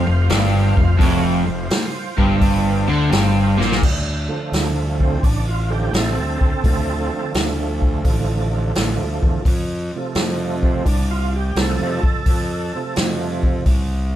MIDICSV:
0, 0, Header, 1, 5, 480
1, 0, Start_track
1, 0, Key_signature, -1, "minor"
1, 0, Tempo, 703400
1, 684, Time_signature, 4, 2, 24, 8
1, 9660, End_track
2, 0, Start_track
2, 0, Title_t, "Tonewheel organ"
2, 0, Program_c, 0, 16
2, 0, Note_on_c, 0, 65, 69
2, 0, Note_on_c, 0, 72, 72
2, 0, Note_on_c, 0, 77, 69
2, 667, Note_off_c, 0, 77, 0
2, 669, Note_off_c, 0, 72, 0
2, 670, Note_off_c, 0, 65, 0
2, 684, Note_on_c, 0, 66, 66
2, 686, Note_on_c, 0, 73, 61
2, 839, Note_on_c, 0, 72, 67
2, 842, Note_on_c, 0, 65, 73
2, 844, Note_off_c, 0, 66, 0
2, 845, Note_off_c, 0, 73, 0
2, 2587, Note_off_c, 0, 72, 0
2, 2591, Note_off_c, 0, 65, 0
2, 2924, Note_on_c, 0, 50, 56
2, 2928, Note_on_c, 0, 57, 56
2, 2930, Note_on_c, 0, 53, 51
2, 3427, Note_on_c, 0, 60, 84
2, 3538, Note_off_c, 0, 50, 0
2, 3540, Note_off_c, 0, 57, 0
2, 3542, Note_off_c, 0, 53, 0
2, 3574, Note_off_c, 0, 60, 0
2, 3577, Note_on_c, 0, 62, 85
2, 3729, Note_off_c, 0, 62, 0
2, 3736, Note_on_c, 0, 65, 83
2, 3888, Note_off_c, 0, 65, 0
2, 3889, Note_on_c, 0, 53, 43
2, 3891, Note_on_c, 0, 57, 55
2, 3893, Note_on_c, 0, 50, 46
2, 3900, Note_on_c, 0, 67, 75
2, 4032, Note_off_c, 0, 53, 0
2, 4033, Note_off_c, 0, 57, 0
2, 4034, Note_off_c, 0, 50, 0
2, 4051, Note_off_c, 0, 67, 0
2, 4067, Note_on_c, 0, 69, 89
2, 4069, Note_on_c, 0, 60, 77
2, 4531, Note_on_c, 0, 50, 51
2, 4536, Note_on_c, 0, 57, 61
2, 4540, Note_on_c, 0, 53, 49
2, 4993, Note_off_c, 0, 69, 0
2, 4994, Note_off_c, 0, 60, 0
2, 6424, Note_off_c, 0, 50, 0
2, 6427, Note_off_c, 0, 57, 0
2, 6429, Note_off_c, 0, 53, 0
2, 6794, Note_on_c, 0, 48, 56
2, 6801, Note_on_c, 0, 53, 52
2, 6806, Note_on_c, 0, 57, 63
2, 7256, Note_on_c, 0, 60, 90
2, 7393, Note_off_c, 0, 48, 0
2, 7396, Note_off_c, 0, 53, 0
2, 7399, Note_off_c, 0, 57, 0
2, 7403, Note_on_c, 0, 62, 93
2, 7409, Note_off_c, 0, 60, 0
2, 7562, Note_off_c, 0, 62, 0
2, 7580, Note_on_c, 0, 65, 85
2, 7731, Note_off_c, 0, 65, 0
2, 7750, Note_on_c, 0, 67, 85
2, 7890, Note_on_c, 0, 48, 46
2, 7895, Note_off_c, 0, 67, 0
2, 7899, Note_on_c, 0, 53, 41
2, 7909, Note_on_c, 0, 57, 53
2, 7909, Note_on_c, 0, 69, 96
2, 8186, Note_off_c, 0, 48, 0
2, 8190, Note_off_c, 0, 53, 0
2, 8196, Note_off_c, 0, 57, 0
2, 8702, Note_on_c, 0, 48, 54
2, 8709, Note_on_c, 0, 53, 52
2, 8711, Note_on_c, 0, 57, 58
2, 8830, Note_off_c, 0, 69, 0
2, 9305, Note_off_c, 0, 48, 0
2, 9308, Note_off_c, 0, 53, 0
2, 9309, Note_off_c, 0, 57, 0
2, 9660, End_track
3, 0, Start_track
3, 0, Title_t, "Overdriven electric guitar"
3, 0, Program_c, 1, 29
3, 48, Note_on_c, 1, 41, 73
3, 173, Note_off_c, 1, 41, 0
3, 205, Note_on_c, 1, 43, 105
3, 518, Note_off_c, 1, 43, 0
3, 527, Note_on_c, 1, 41, 73
3, 652, Note_off_c, 1, 41, 0
3, 675, Note_on_c, 1, 41, 94
3, 992, Note_off_c, 1, 41, 0
3, 1000, Note_on_c, 1, 41, 75
3, 1130, Note_off_c, 1, 41, 0
3, 1486, Note_on_c, 1, 43, 106
3, 1959, Note_off_c, 1, 43, 0
3, 1969, Note_on_c, 1, 50, 99
3, 2122, Note_off_c, 1, 50, 0
3, 2122, Note_on_c, 1, 43, 105
3, 2439, Note_off_c, 1, 43, 0
3, 2441, Note_on_c, 1, 46, 110
3, 2598, Note_off_c, 1, 46, 0
3, 9660, End_track
4, 0, Start_track
4, 0, Title_t, "Fingered electric bass"
4, 0, Program_c, 2, 33
4, 44, Note_on_c, 2, 29, 79
4, 191, Note_off_c, 2, 29, 0
4, 207, Note_on_c, 2, 31, 96
4, 507, Note_off_c, 2, 31, 0
4, 527, Note_on_c, 2, 29, 82
4, 673, Note_off_c, 2, 29, 0
4, 684, Note_on_c, 2, 29, 92
4, 986, Note_off_c, 2, 29, 0
4, 1009, Note_on_c, 2, 29, 77
4, 1154, Note_off_c, 2, 29, 0
4, 1487, Note_on_c, 2, 31, 87
4, 1942, Note_off_c, 2, 31, 0
4, 1966, Note_on_c, 2, 38, 96
4, 2114, Note_off_c, 2, 38, 0
4, 2122, Note_on_c, 2, 31, 94
4, 2426, Note_off_c, 2, 31, 0
4, 2452, Note_on_c, 2, 34, 96
4, 2597, Note_off_c, 2, 34, 0
4, 2607, Note_on_c, 2, 38, 101
4, 2910, Note_off_c, 2, 38, 0
4, 3085, Note_on_c, 2, 38, 89
4, 3540, Note_off_c, 2, 38, 0
4, 3575, Note_on_c, 2, 33, 100
4, 4026, Note_off_c, 2, 33, 0
4, 4044, Note_on_c, 2, 33, 91
4, 4198, Note_off_c, 2, 33, 0
4, 4216, Note_on_c, 2, 38, 74
4, 4365, Note_off_c, 2, 38, 0
4, 4374, Note_on_c, 2, 38, 89
4, 4447, Note_off_c, 2, 38, 0
4, 4535, Note_on_c, 2, 38, 105
4, 4835, Note_off_c, 2, 38, 0
4, 5013, Note_on_c, 2, 38, 88
4, 5465, Note_off_c, 2, 38, 0
4, 5492, Note_on_c, 2, 33, 104
4, 5945, Note_off_c, 2, 33, 0
4, 5979, Note_on_c, 2, 33, 90
4, 6126, Note_off_c, 2, 33, 0
4, 6136, Note_on_c, 2, 38, 76
4, 6286, Note_off_c, 2, 38, 0
4, 6298, Note_on_c, 2, 40, 84
4, 6370, Note_off_c, 2, 40, 0
4, 6455, Note_on_c, 2, 41, 104
4, 6755, Note_off_c, 2, 41, 0
4, 6928, Note_on_c, 2, 41, 85
4, 7382, Note_off_c, 2, 41, 0
4, 7412, Note_on_c, 2, 36, 95
4, 7863, Note_off_c, 2, 36, 0
4, 7885, Note_on_c, 2, 36, 84
4, 8038, Note_off_c, 2, 36, 0
4, 8048, Note_on_c, 2, 41, 79
4, 8200, Note_off_c, 2, 41, 0
4, 8211, Note_on_c, 2, 41, 81
4, 8285, Note_off_c, 2, 41, 0
4, 8370, Note_on_c, 2, 41, 102
4, 8671, Note_off_c, 2, 41, 0
4, 8851, Note_on_c, 2, 41, 90
4, 9302, Note_off_c, 2, 41, 0
4, 9321, Note_on_c, 2, 36, 101
4, 9660, Note_off_c, 2, 36, 0
4, 9660, End_track
5, 0, Start_track
5, 0, Title_t, "Drums"
5, 202, Note_on_c, 9, 46, 64
5, 208, Note_on_c, 9, 38, 108
5, 270, Note_off_c, 9, 46, 0
5, 276, Note_off_c, 9, 38, 0
5, 526, Note_on_c, 9, 36, 85
5, 594, Note_off_c, 9, 36, 0
5, 683, Note_on_c, 9, 36, 103
5, 686, Note_on_c, 9, 46, 58
5, 751, Note_off_c, 9, 36, 0
5, 755, Note_off_c, 9, 46, 0
5, 1163, Note_on_c, 9, 46, 59
5, 1169, Note_on_c, 9, 38, 113
5, 1231, Note_off_c, 9, 46, 0
5, 1237, Note_off_c, 9, 38, 0
5, 1489, Note_on_c, 9, 36, 80
5, 1558, Note_off_c, 9, 36, 0
5, 1646, Note_on_c, 9, 36, 89
5, 1647, Note_on_c, 9, 46, 58
5, 1714, Note_off_c, 9, 36, 0
5, 1715, Note_off_c, 9, 46, 0
5, 2131, Note_on_c, 9, 46, 54
5, 2137, Note_on_c, 9, 38, 110
5, 2199, Note_off_c, 9, 46, 0
5, 2205, Note_off_c, 9, 38, 0
5, 2464, Note_on_c, 9, 38, 61
5, 2532, Note_off_c, 9, 38, 0
5, 2538, Note_on_c, 9, 38, 92
5, 2606, Note_off_c, 9, 38, 0
5, 2610, Note_on_c, 9, 36, 100
5, 2614, Note_on_c, 9, 49, 107
5, 2678, Note_off_c, 9, 36, 0
5, 2682, Note_off_c, 9, 49, 0
5, 3092, Note_on_c, 9, 46, 58
5, 3099, Note_on_c, 9, 38, 102
5, 3161, Note_off_c, 9, 46, 0
5, 3167, Note_off_c, 9, 38, 0
5, 3414, Note_on_c, 9, 36, 79
5, 3482, Note_off_c, 9, 36, 0
5, 3570, Note_on_c, 9, 36, 87
5, 3574, Note_on_c, 9, 46, 55
5, 3639, Note_off_c, 9, 36, 0
5, 3642, Note_off_c, 9, 46, 0
5, 4053, Note_on_c, 9, 46, 57
5, 4059, Note_on_c, 9, 38, 104
5, 4121, Note_off_c, 9, 46, 0
5, 4127, Note_off_c, 9, 38, 0
5, 4374, Note_on_c, 9, 36, 81
5, 4443, Note_off_c, 9, 36, 0
5, 4531, Note_on_c, 9, 36, 104
5, 4532, Note_on_c, 9, 46, 53
5, 4600, Note_off_c, 9, 36, 0
5, 4601, Note_off_c, 9, 46, 0
5, 5011, Note_on_c, 9, 46, 57
5, 5017, Note_on_c, 9, 38, 106
5, 5079, Note_off_c, 9, 46, 0
5, 5086, Note_off_c, 9, 38, 0
5, 5335, Note_on_c, 9, 36, 75
5, 5403, Note_off_c, 9, 36, 0
5, 5491, Note_on_c, 9, 36, 82
5, 5491, Note_on_c, 9, 46, 54
5, 5559, Note_off_c, 9, 46, 0
5, 5560, Note_off_c, 9, 36, 0
5, 5973, Note_on_c, 9, 46, 53
5, 5979, Note_on_c, 9, 38, 106
5, 6041, Note_off_c, 9, 46, 0
5, 6047, Note_off_c, 9, 38, 0
5, 6296, Note_on_c, 9, 36, 87
5, 6364, Note_off_c, 9, 36, 0
5, 6451, Note_on_c, 9, 36, 101
5, 6453, Note_on_c, 9, 46, 53
5, 6519, Note_off_c, 9, 36, 0
5, 6521, Note_off_c, 9, 46, 0
5, 6925, Note_on_c, 9, 46, 53
5, 6931, Note_on_c, 9, 38, 105
5, 6994, Note_off_c, 9, 46, 0
5, 7000, Note_off_c, 9, 38, 0
5, 7253, Note_on_c, 9, 36, 76
5, 7321, Note_off_c, 9, 36, 0
5, 7410, Note_on_c, 9, 36, 86
5, 7412, Note_on_c, 9, 46, 59
5, 7478, Note_off_c, 9, 36, 0
5, 7480, Note_off_c, 9, 46, 0
5, 7890, Note_on_c, 9, 46, 59
5, 7896, Note_on_c, 9, 38, 105
5, 7958, Note_off_c, 9, 46, 0
5, 7964, Note_off_c, 9, 38, 0
5, 8212, Note_on_c, 9, 36, 88
5, 8280, Note_off_c, 9, 36, 0
5, 8366, Note_on_c, 9, 36, 101
5, 8366, Note_on_c, 9, 46, 57
5, 8434, Note_off_c, 9, 46, 0
5, 8435, Note_off_c, 9, 36, 0
5, 8844, Note_on_c, 9, 46, 57
5, 8850, Note_on_c, 9, 38, 110
5, 8912, Note_off_c, 9, 46, 0
5, 8918, Note_off_c, 9, 38, 0
5, 9165, Note_on_c, 9, 36, 77
5, 9234, Note_off_c, 9, 36, 0
5, 9320, Note_on_c, 9, 46, 54
5, 9321, Note_on_c, 9, 36, 81
5, 9389, Note_off_c, 9, 36, 0
5, 9389, Note_off_c, 9, 46, 0
5, 9660, End_track
0, 0, End_of_file